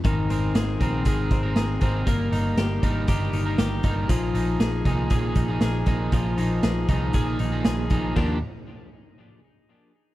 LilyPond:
<<
  \new Staff \with { instrumentName = "Clean electric guitar" } { \time 4/4 \key ees \major \tempo 4 = 118 ees8 c'8 aes'8 c'8 aes'8 c'8 aes'8 c'8 | bes8 ees'8 g'8 ees'8 g'8 ees'8 g'8 ees'8 | f8 ees'8 aes'8 ees'8 aes'8 ees'8 aes'8 ees'8 | f8 ees'8 aes'8 ees'8 aes'8 ees'8 aes'8 ees'8 |
<f bes d' g'>8 r2. r8 | }
  \new Staff \with { instrumentName = "Clean electric guitar" } { \time 4/4 \key ees \major <aes c' ees' bes'>8 <aes c' ees' bes'>4 <aes c' ees' bes'>8 <aes c' ees' bes'>8. <aes c' ees' bes'>8. <aes c' ees' bes'>8 | <g bes ees' bes'>8 <g bes ees' bes'>4 <g, ees g bes ees' bes'>8 <g, ees g bes ees' bes'>8. <g, ees g bes ees' bes'>8. <g, ees g bes ees' bes'>8 | <f bes ees' aes'>8 <f bes ees' aes'>4 <bes, ees f bes ees' aes'>8 <bes, ees f bes ees' aes'>8. <bes, ees f bes ees' aes'>8. <bes, ees f bes ees' aes'>8 | <f bes ees' aes'>8 <f bes ees' aes'>4 <bes, ees f bes ees' aes'>8 <bes, ees f bes ees' aes'>8. <bes, ees f bes ees' aes'>8. <bes, ees f bes ees' aes'>8 |
<ees f bes d' g'>8 r2. r8 | }
  \new Staff \with { instrumentName = "Picked electric bass" } { \clef bass \time 4/4 \key ees \major aes,,8 aes,,8 aes,,8 bes,,8 aes,,8 aes,,8 aes,,8 aes,,8 | g,,8 g,,8 g,,8 aes,,8 g,,8 g,,8 g,,8 g,,8 | bes,,8 bes,,8 bes,,8 c,8 bes,,8 bes,,8 bes,,8 bes,,8 | bes,,8 bes,,8 bes,,8 c,8 bes,,8 bes,,8 bes,,8 bes,,8 |
ees,8 r2. r8 | }
  \new DrumStaff \with { instrumentName = "Drums" } \drummode { \time 4/4 <hh bd>8 hh8 <hh sn>8 <hh bd>8 <hh bd>8 <hh bd>8 <hh sn>8 <hh bd>8 | <hh bd>8 hh8 <hh sn>8 <hh bd>8 <hh bd>8 hh8 <hh sn>8 <hh bd>8 | <hh bd>8 hh8 <hh sn>8 <hh bd>8 <hh bd>8 <hh bd>8 <hh sn>8 <hh bd>8 | <hh bd>8 hh8 <hh sn>8 <hh bd>8 <hh bd>8 hh8 <hh sn>8 <hh bd>8 |
<cymc bd>4 r4 r4 r4 | }
>>